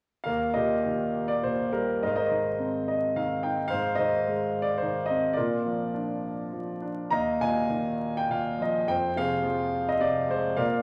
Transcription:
grand piano
0.24 D#2 A#4 F5
0.54 A#2 G4 A#4 D#5
0.85 D#3
1.28 D5
1.43 A#2 C5
1.73 G3 A#4
2.03 G#2 A#4 C5 D#5 F5
2.16 A#4 C5 D#5
2.31 D#3
2.59 C4
2.88 D#5
3.16 D#3 F5
3.43 D#4 G5
3.68 G#2 C5 F5
3.95 D#3 C5 D#5
4.27 G#3
4.62 D5
4.77 C5
4.82 D#3
5.06 D#5
5.10 C4
5.33 A#2 F4 A#4 D5
5.66 F3
5.94 D4
6.53 F3
6.82 D4
7.10 D#2 D#5 F5 A#5
7.40 A#2 D#5 F5 G#5
7.70 D#3
8.17 G5
8.29 A#2 F5
8.58 F3 D#5
8.87 F2 C5 G5
9.16 C3 G#4 C5 F5
9.43 F3
9.89 D#5
10.00 C3 D5
10.28 G#3 C5
10.56 A#2 A#4 D5 F5

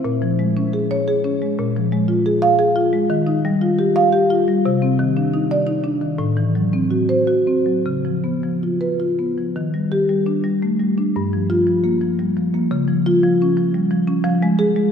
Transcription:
marimba
0.05 A#2
0.22 F3
0.39 G#3
0.57 C#4
0.73 G#4
0.91 C#5
1.08 G#4
1.24 C#4
1.42 G#3
1.59 A#2
1.76 F3
1.93 G#3
2.08 F4
2.26 G#4
2.42 F5
2.59 G#4
2.76 F4
2.93 G#3
3.10 D#3
3.27 D#4
3.45 G3
3.61 F4
3.79 G4
3.96 F5
4.12 G4
4.30 F4
4.48 G3
4.66 C3
4.82 C4
4.99 D#3
5.17 D4
5.34 D#4
5.51 D5
5.67 D#4
5.84 D4
6.01 D#3
6.18 A2
6.37 E3
6.55 F#3
6.73 C4
6.91 F#4
7.09 C5
7.27 F#4
7.47 C4
7.66 F#3
7.86 C#3
8.05 F3
8.24 B3
8.43 F3
8.63 F4
8.81 B4
9.00 F4
9.19 B3
9.38 F3
9.56 D#3
9.74 G3
9.92 G4
10.09 G3
10.26 D4
10.44 G3
10.63 A3
10.80 G3
10.98 D4
11.16 G2
11.33 F3
11.50 F4
11.67 F3
11.84 A#3
12.01 F3
12.19 G3
12.37 F3
12.54 A#3
12.71 C#3
12.88 F3
13.06 F4
13.23 F3
13.42 C#4
13.57 F3
13.74 G3
13.91 F3
14.07 C#4
14.24 F3
14.43 G#3
14.59 G#4
14.76 G#3

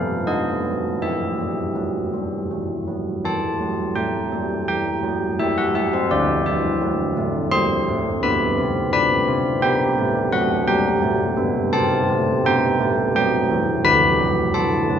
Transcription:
church bells
Already playing: F3 A4 F5
0.27 B3 A4 D#5
0.64 F#3
1.02 E3 G4 E5
1.39 G3
1.75 F#3
2.14 G3
2.51 E3
2.87 F#3
3.25 E3 G4 A5
3.61 F#3
3.96 A3 G5
4.32 G3
4.68 E3 G5
5.03 F#3
5.39 G3 G4 E5
5.58 F#5
5.74 F#3 E5
5.93 C5
6.11 D3 D5
6.46 E3 E5
6.82 F#3
7.17 A3
7.51 G3 G4 C6
7.88 A3
8.23 B3 B5
8.58 C4
8.93 D4 B5
9.28 C4
9.62 B3 G4 G5
9.98 A3
10.32 F#3 F#5
10.68 G3 G5
11.02 A3
11.37 B3
11.73 C4 G4 A5
12.09 A3
12.45 B3 G5
12.80 A3
13.16 F#3 G5
13.50 E3
13.85 D3 F#4 B5
14.20 F#3
14.54 E3 A5
14.90 F#3

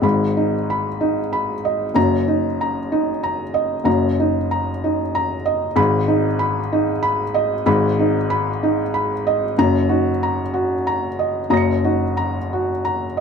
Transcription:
felt piano
Already playing: D#5
0.02 G#1 G#2 B5
0.37 D#4
0.70 B5
1.01 D#4
1.33 B5
1.65 D#5
1.94 F#1 F#2 A#5
2.28 D#4
2.61 A#5
2.92 D#4
3.23 A#5
3.54 D#5
3.84 F#1 F#2 A#5
4.20 D#4
4.51 A#5
4.84 D#4
5.15 A#5
5.46 D#5
5.76 G#1 G#2 B5
6.08 D#4
6.39 B5
6.73 D#4
7.03 B5
7.34 D#5
7.66 G#1 G#2 B5
7.99 D#4
8.30 B5
8.63 D#4
8.94 B5
9.27 D#5
9.58 F#1 F#2 A#5
9.89 D#4 F#4
10.23 A#5
10.54 F#4
10.87 A#5
11.19 D#5
11.50 F#1 F#2 A#5 D#6 A#6
11.57 C#7
11.84 D#4 F#4
12.17 A#5
12.53 F#4
12.85 A#5
13.17 D#5

